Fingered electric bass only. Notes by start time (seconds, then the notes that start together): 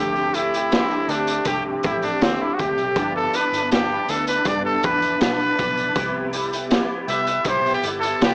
Already playing: D2
1.08 D2
1.45 C2
1.84 A1
2.21 D2
2.59 D2
2.77 B1
2.96 G1
3.52 G1
4.08 D2
4.45 G2
4.84 E2
5.21 B1
5.59 B1
5.96 C2
7.08 C2
7.45 B1
7.83 G1
8.21 C2